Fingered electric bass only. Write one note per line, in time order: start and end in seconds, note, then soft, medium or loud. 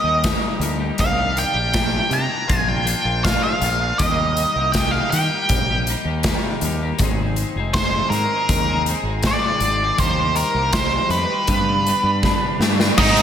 0.04 0.34 D#2 medium
0.59 0.90 D2 loud
0.98 1.43 C2 medium
1.54 1.98 A#1 medium
2.10 2.26 C3 medium
2.49 2.93 A#1 medium
3.05 3.34 A#1 medium
3.61 3.91 A#1 loud
4.00 4.43 D#2 medium
4.56 4.99 C2 medium
5.12 5.27 D#3 medium
5.50 5.93 A#1 medium
6.05 6.34 D#2 medium
6.62 6.91 D#2 medium
6.98 7.43 G#1 medium
7.56 7.99 F1 medium
8.10 8.25 G#2 medium
8.49 8.93 D#2 medium
9.03 9.33 G#1 medium
9.60 9.90 G#1 medium
9.98 10.42 D#2 medium
10.54 10.98 C2 medium
11.09 11.24 F2 medium
11.48 11.91 G2 medium
12.03 12.33 G2 medium
12.59 12.89 G2 loud
12.97 13.22 G#2 loud